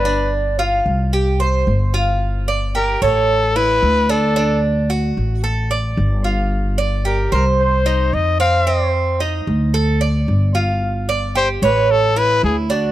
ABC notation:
X:1
M:4/4
L:1/8
Q:1/4=112
K:Dphr
V:1 name="Trumpet"
=B z6 z | z2 B A2 =B2 A- | A z6 z | z2 B B c2 e f- |
f z6 z | z2 c =B A B _A ^F |]
V:2 name="Cuban tres"
D2 F2 G c2 F- | F d G ^c2 =E2 D | D2 ^F2 A d2 =F- | F d G c2 E2 C |
C2 E2 A d2 F- | F d G ^c2 =E2 D |]
V:3 name="Upright bass" clef=bass
G,,,3 C,,3 G,,,2- | G,,,3 A,,,3 D,,2- | D,,3 A,,,3 G,,,2- | G,,,3 C,,3 F,,2- |
F,,3 D,,3 G,,,2- | G,,,3 A,,,3 D,,2 |]